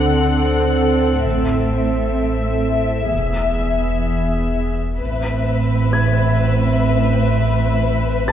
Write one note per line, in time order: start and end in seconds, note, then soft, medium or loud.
0.00 1.27 D2 medium
0.00 1.24 D3 soft
0.00 3.08 C4 soft
0.00 3.08 A4 soft
0.00 1.21 F#5 soft
1.24 2.14 A1 soft
1.24 3.15 A1 medium
1.24 3.08 A2 soft
1.24 4.76 E5 soft
3.12 4.02 E1 soft
3.12 5.00 E1 medium
3.12 4.80 E2 soft
3.12 4.76 B3 soft
3.12 4.76 G#4 soft
4.99 8.32 A1 soft
4.99 8.32 A1 medium
4.99 8.32 A2 soft
4.99 8.32 C4 soft
4.99 8.32 B4 soft
4.99 8.32 E5 soft
5.93 8.32 G#6 soft
8.28 8.32 A5 soft
8.28 8.32 A6 soft